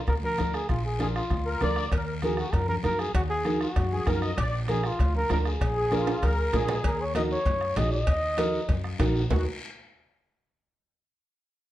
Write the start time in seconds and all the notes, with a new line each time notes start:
0.07 D2 A#4, bombo low, bombo rim, low conga, long guiro
0.23 A#4, high conga
0.38 D2 D4 F4 A#4, bombo rim, high conga, short guiro
0.53 G#4, bombo rim, short guiro
0.69 A#1 F4, bombo low, bombo rim, low conga, long guiro
0.85 G#4
0.99 D4 F4 G#4 A#4, bombo rim, high conga, short guiro
1.16 F4, bombo rim, short guiro
1.30 D2, bombo low, bombo rim, low conga, long guiro
1.46 A#4
1.61 D2 D4 F4 A#4 D5, bombo rim, high conga, low conga, short guiro
1.76 bombo rim, short guiro
1.91 D#2 A#4, bombo low, bombo rim, cowbell, long guiro
2.22 D#4 F#4 G#4 A#4, bombo rim, high conga, short guiro
2.37 F#4, bombo rim, short guiro
2.53 F#2 A#4, bombo low, bombo rim, cowbell, low conga, long guiro
2.68 A#4, high conga
2.83 F#2 D#4 F#4 A#4, bombo rim, high conga, low conga, short guiro
2.99 G#4, bombo rim, short guiro
3.15 D#2 F#4, bombo low, bombo rim, cowbell, long guiro
3.30 G#4
3.44 D#4 F#4 A#4, bombo rim, high conga, short guiro
3.61 F#4, bombo rim, short guiro
3.76 F#2, bombo low, bombo rim, cowbell, low conga, long guiro
3.92 G#4, high conga
4.07 F#2 D#4 F#4 A#4, bombo low, bombo rim, high conga, low conga, low timbale, short guiro
4.22 D#5, bombo rim, short guiro
4.38 A#1 D5, bombo low, bombo rim, cowbell, long guiro
4.68 D4 F4 G#4 A#4, bombo rim, high conga, short guiro
4.84 F4, bombo rim, short guiro
4.99 D2, bombo low, bombo rim, cowbell, low conga, long guiro
5.15 A#4, high conga
5.30 D2 D4 F4 A#4, bombo rim, high conga, low conga, low timbale, short guiro
5.45 G#4, bombo rim, short guiro
5.61 A#1, bombo low, bombo rim, cowbell, low conga, long guiro
5.77 G#4
5.91 D4 F4 A#4, bombo rim, high conga, short guiro
6.07 bombo rim, high timbale, short guiro
6.22 D2 A#4, bombo low, bombo rim, cowbell, high conga, long guiro
6.53 A#1 D4 F4 G#4 A#4, bombo low, bombo rim, low conga, low timbale, short guiro
6.68 bombo rim, low conga, low timbale, short guiro
6.84 D#2 A#4, bombo low, cowbell, high conga, long guiro
7.01 C#5
7.14 D#4 F#4 A#4 D#5, bombo rim, cowbell, high conga, short guiro
7.31 C#5, short guiro
7.45 F#2, bombo low, cowbell, high conga, low conga, long guiro
7.61 bombo rim
7.76 A#1 D#4 F#4 G#4 D#5, bombo rim, cowbell, high conga, low timbale, short guiro
7.92 D#5, short guiro
8.07 D#2, bombo low, cowbell, high conga, low conga, long guiro
8.37 D#4 F#4 A#4, bombo rim, cowbell, high conga, short guiro
8.53 short guiro
8.69 F#2, bombo low, cowbell, high conga, low conga, long guiro
8.84 bombo rim
8.99 A#1 D#4 F#4 A#4, bombo low, bombo rim, cowbell, high conga, low conga, low timbale, short guiro
9.16 short guiro
9.30 D#2 D#4 F#4 A#4, bombo low, low conga, low timbale, long guiro